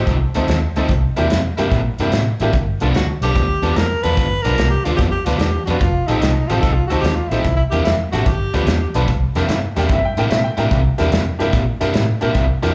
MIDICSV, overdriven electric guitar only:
0, 0, Header, 1, 2, 480
1, 0, Start_track
1, 0, Tempo, 409277
1, 1057, Time_signature, 4, 2, 24, 8
1, 14946, End_track
2, 0, Start_track
2, 0, Title_t, "Overdriven electric guitar"
2, 0, Program_c, 0, 29
2, 0, Note_on_c, 0, 53, 64
2, 0, Note_on_c, 0, 60, 65
2, 0, Note_on_c, 0, 63, 75
2, 0, Note_on_c, 0, 69, 73
2, 183, Note_off_c, 0, 69, 0
2, 186, Note_off_c, 0, 63, 0
2, 191, Note_off_c, 0, 60, 0
2, 193, Note_off_c, 0, 53, 0
2, 412, Note_on_c, 0, 63, 81
2, 413, Note_on_c, 0, 69, 85
2, 420, Note_on_c, 0, 60, 76
2, 423, Note_on_c, 0, 53, 77
2, 670, Note_off_c, 0, 63, 0
2, 670, Note_off_c, 0, 69, 0
2, 674, Note_off_c, 0, 60, 0
2, 675, Note_off_c, 0, 53, 0
2, 904, Note_on_c, 0, 69, 70
2, 908, Note_on_c, 0, 63, 71
2, 915, Note_on_c, 0, 60, 75
2, 920, Note_on_c, 0, 53, 66
2, 1059, Note_off_c, 0, 69, 0
2, 1062, Note_off_c, 0, 63, 0
2, 1065, Note_off_c, 0, 60, 0
2, 1067, Note_off_c, 0, 53, 0
2, 1369, Note_on_c, 0, 64, 95
2, 1375, Note_on_c, 0, 58, 80
2, 1381, Note_on_c, 0, 55, 74
2, 1385, Note_on_c, 0, 48, 66
2, 1628, Note_off_c, 0, 64, 0
2, 1632, Note_off_c, 0, 58, 0
2, 1634, Note_off_c, 0, 55, 0
2, 1637, Note_off_c, 0, 48, 0
2, 1847, Note_on_c, 0, 64, 73
2, 1854, Note_on_c, 0, 58, 74
2, 1861, Note_on_c, 0, 55, 67
2, 1868, Note_on_c, 0, 48, 60
2, 2107, Note_off_c, 0, 64, 0
2, 2111, Note_off_c, 0, 58, 0
2, 2114, Note_off_c, 0, 55, 0
2, 2118, Note_off_c, 0, 48, 0
2, 2348, Note_on_c, 0, 64, 82
2, 2349, Note_on_c, 0, 58, 73
2, 2360, Note_on_c, 0, 55, 68
2, 2364, Note_on_c, 0, 48, 69
2, 2598, Note_off_c, 0, 58, 0
2, 2598, Note_off_c, 0, 64, 0
2, 2604, Note_off_c, 0, 55, 0
2, 2606, Note_off_c, 0, 48, 0
2, 2827, Note_on_c, 0, 64, 78
2, 2837, Note_on_c, 0, 58, 72
2, 2838, Note_on_c, 0, 55, 65
2, 2843, Note_on_c, 0, 48, 60
2, 2981, Note_off_c, 0, 64, 0
2, 2986, Note_off_c, 0, 55, 0
2, 2986, Note_off_c, 0, 58, 0
2, 2989, Note_off_c, 0, 48, 0
2, 3309, Note_on_c, 0, 62, 84
2, 3314, Note_on_c, 0, 59, 82
2, 3323, Note_on_c, 0, 53, 83
2, 3324, Note_on_c, 0, 43, 70
2, 3558, Note_off_c, 0, 62, 0
2, 3561, Note_off_c, 0, 59, 0
2, 3565, Note_off_c, 0, 53, 0
2, 3566, Note_off_c, 0, 43, 0
2, 3790, Note_on_c, 0, 62, 72
2, 3795, Note_on_c, 0, 59, 70
2, 3797, Note_on_c, 0, 53, 71
2, 3806, Note_on_c, 0, 43, 59
2, 4039, Note_off_c, 0, 62, 0
2, 4041, Note_off_c, 0, 59, 0
2, 4042, Note_off_c, 0, 53, 0
2, 4047, Note_off_c, 0, 43, 0
2, 4254, Note_on_c, 0, 62, 82
2, 4261, Note_on_c, 0, 59, 75
2, 4267, Note_on_c, 0, 53, 84
2, 4268, Note_on_c, 0, 43, 67
2, 4510, Note_off_c, 0, 62, 0
2, 4514, Note_off_c, 0, 59, 0
2, 4517, Note_off_c, 0, 53, 0
2, 4518, Note_off_c, 0, 43, 0
2, 4750, Note_on_c, 0, 62, 77
2, 4753, Note_on_c, 0, 59, 75
2, 4761, Note_on_c, 0, 53, 66
2, 4762, Note_on_c, 0, 43, 68
2, 4999, Note_off_c, 0, 62, 0
2, 5000, Note_off_c, 0, 59, 0
2, 5004, Note_off_c, 0, 53, 0
2, 5005, Note_off_c, 0, 43, 0
2, 5217, Note_on_c, 0, 62, 87
2, 5227, Note_on_c, 0, 59, 83
2, 5228, Note_on_c, 0, 53, 77
2, 5235, Note_on_c, 0, 43, 77
2, 5472, Note_off_c, 0, 62, 0
2, 5477, Note_off_c, 0, 53, 0
2, 5477, Note_off_c, 0, 59, 0
2, 5481, Note_off_c, 0, 43, 0
2, 5695, Note_on_c, 0, 62, 74
2, 5702, Note_on_c, 0, 59, 65
2, 5710, Note_on_c, 0, 43, 62
2, 5711, Note_on_c, 0, 53, 75
2, 5951, Note_off_c, 0, 62, 0
2, 5955, Note_off_c, 0, 59, 0
2, 5959, Note_off_c, 0, 43, 0
2, 5959, Note_off_c, 0, 53, 0
2, 6173, Note_on_c, 0, 62, 85
2, 6177, Note_on_c, 0, 59, 80
2, 6181, Note_on_c, 0, 53, 84
2, 6185, Note_on_c, 0, 43, 72
2, 6430, Note_off_c, 0, 62, 0
2, 6432, Note_off_c, 0, 59, 0
2, 6434, Note_off_c, 0, 53, 0
2, 6436, Note_off_c, 0, 43, 0
2, 6655, Note_on_c, 0, 62, 78
2, 6662, Note_on_c, 0, 59, 78
2, 6665, Note_on_c, 0, 53, 66
2, 6669, Note_on_c, 0, 43, 67
2, 6815, Note_off_c, 0, 62, 0
2, 6818, Note_off_c, 0, 59, 0
2, 6820, Note_off_c, 0, 53, 0
2, 6822, Note_off_c, 0, 43, 0
2, 7134, Note_on_c, 0, 69, 80
2, 7143, Note_on_c, 0, 60, 86
2, 7144, Note_on_c, 0, 63, 84
2, 7152, Note_on_c, 0, 53, 72
2, 7391, Note_off_c, 0, 69, 0
2, 7395, Note_off_c, 0, 60, 0
2, 7396, Note_off_c, 0, 63, 0
2, 7400, Note_off_c, 0, 53, 0
2, 7624, Note_on_c, 0, 63, 76
2, 7624, Note_on_c, 0, 69, 87
2, 7632, Note_on_c, 0, 60, 66
2, 7634, Note_on_c, 0, 53, 64
2, 7876, Note_off_c, 0, 63, 0
2, 7876, Note_off_c, 0, 69, 0
2, 7880, Note_off_c, 0, 60, 0
2, 7881, Note_off_c, 0, 53, 0
2, 8095, Note_on_c, 0, 69, 86
2, 8105, Note_on_c, 0, 63, 75
2, 8112, Note_on_c, 0, 60, 71
2, 8114, Note_on_c, 0, 53, 75
2, 8352, Note_off_c, 0, 69, 0
2, 8357, Note_off_c, 0, 63, 0
2, 8360, Note_off_c, 0, 60, 0
2, 8361, Note_off_c, 0, 53, 0
2, 8585, Note_on_c, 0, 69, 75
2, 8593, Note_on_c, 0, 63, 73
2, 8594, Note_on_c, 0, 60, 72
2, 8599, Note_on_c, 0, 53, 57
2, 8740, Note_off_c, 0, 69, 0
2, 8744, Note_off_c, 0, 60, 0
2, 8744, Note_off_c, 0, 63, 0
2, 8747, Note_off_c, 0, 53, 0
2, 9054, Note_on_c, 0, 64, 80
2, 9056, Note_on_c, 0, 58, 85
2, 9063, Note_on_c, 0, 55, 88
2, 9068, Note_on_c, 0, 48, 68
2, 9311, Note_off_c, 0, 64, 0
2, 9312, Note_off_c, 0, 58, 0
2, 9315, Note_off_c, 0, 55, 0
2, 9318, Note_off_c, 0, 48, 0
2, 9533, Note_on_c, 0, 64, 81
2, 9539, Note_on_c, 0, 58, 64
2, 9545, Note_on_c, 0, 55, 67
2, 9551, Note_on_c, 0, 48, 67
2, 9694, Note_off_c, 0, 64, 0
2, 9697, Note_off_c, 0, 58, 0
2, 9700, Note_off_c, 0, 55, 0
2, 9703, Note_off_c, 0, 48, 0
2, 10015, Note_on_c, 0, 62, 86
2, 10021, Note_on_c, 0, 59, 77
2, 10025, Note_on_c, 0, 53, 79
2, 10032, Note_on_c, 0, 43, 69
2, 10271, Note_off_c, 0, 62, 0
2, 10275, Note_off_c, 0, 59, 0
2, 10276, Note_off_c, 0, 53, 0
2, 10280, Note_off_c, 0, 43, 0
2, 10504, Note_on_c, 0, 62, 75
2, 10512, Note_on_c, 0, 59, 66
2, 10517, Note_on_c, 0, 53, 74
2, 10519, Note_on_c, 0, 43, 57
2, 10660, Note_off_c, 0, 62, 0
2, 10664, Note_off_c, 0, 59, 0
2, 10666, Note_off_c, 0, 53, 0
2, 10667, Note_off_c, 0, 43, 0
2, 10979, Note_on_c, 0, 64, 83
2, 10987, Note_on_c, 0, 58, 84
2, 10988, Note_on_c, 0, 55, 77
2, 10993, Note_on_c, 0, 48, 71
2, 11234, Note_off_c, 0, 64, 0
2, 11238, Note_off_c, 0, 55, 0
2, 11238, Note_off_c, 0, 58, 0
2, 11241, Note_off_c, 0, 48, 0
2, 11454, Note_on_c, 0, 64, 71
2, 11458, Note_on_c, 0, 58, 67
2, 11463, Note_on_c, 0, 55, 60
2, 11469, Note_on_c, 0, 48, 62
2, 11711, Note_off_c, 0, 64, 0
2, 11714, Note_off_c, 0, 58, 0
2, 11716, Note_off_c, 0, 55, 0
2, 11719, Note_off_c, 0, 48, 0
2, 11938, Note_on_c, 0, 64, 82
2, 11940, Note_on_c, 0, 58, 83
2, 11946, Note_on_c, 0, 55, 70
2, 11948, Note_on_c, 0, 48, 70
2, 12194, Note_off_c, 0, 64, 0
2, 12195, Note_off_c, 0, 58, 0
2, 12197, Note_off_c, 0, 55, 0
2, 12199, Note_off_c, 0, 48, 0
2, 12400, Note_on_c, 0, 64, 73
2, 12411, Note_on_c, 0, 58, 68
2, 12414, Note_on_c, 0, 55, 63
2, 12419, Note_on_c, 0, 48, 66
2, 12665, Note_off_c, 0, 64, 0
2, 12670, Note_off_c, 0, 58, 0
2, 12672, Note_off_c, 0, 55, 0
2, 12674, Note_off_c, 0, 48, 0
2, 12897, Note_on_c, 0, 64, 93
2, 12905, Note_on_c, 0, 58, 83
2, 12909, Note_on_c, 0, 55, 85
2, 12916, Note_on_c, 0, 48, 73
2, 13153, Note_off_c, 0, 64, 0
2, 13157, Note_off_c, 0, 58, 0
2, 13159, Note_off_c, 0, 55, 0
2, 13163, Note_off_c, 0, 48, 0
2, 13381, Note_on_c, 0, 64, 82
2, 13387, Note_on_c, 0, 58, 69
2, 13390, Note_on_c, 0, 55, 64
2, 13393, Note_on_c, 0, 48, 62
2, 13635, Note_off_c, 0, 64, 0
2, 13638, Note_off_c, 0, 58, 0
2, 13640, Note_off_c, 0, 55, 0
2, 13641, Note_off_c, 0, 48, 0
2, 13853, Note_on_c, 0, 64, 87
2, 13855, Note_on_c, 0, 58, 82
2, 13865, Note_on_c, 0, 55, 83
2, 13867, Note_on_c, 0, 48, 70
2, 14111, Note_off_c, 0, 64, 0
2, 14112, Note_off_c, 0, 58, 0
2, 14117, Note_off_c, 0, 55, 0
2, 14118, Note_off_c, 0, 48, 0
2, 14337, Note_on_c, 0, 64, 82
2, 14344, Note_on_c, 0, 58, 75
2, 14352, Note_on_c, 0, 48, 69
2, 14353, Note_on_c, 0, 55, 69
2, 14594, Note_off_c, 0, 64, 0
2, 14597, Note_off_c, 0, 58, 0
2, 14601, Note_off_c, 0, 48, 0
2, 14601, Note_off_c, 0, 55, 0
2, 14810, Note_on_c, 0, 64, 94
2, 14812, Note_on_c, 0, 58, 85
2, 14819, Note_on_c, 0, 48, 75
2, 14820, Note_on_c, 0, 55, 79
2, 14946, Note_off_c, 0, 48, 0
2, 14946, Note_off_c, 0, 55, 0
2, 14946, Note_off_c, 0, 58, 0
2, 14946, Note_off_c, 0, 64, 0
2, 14946, End_track
0, 0, End_of_file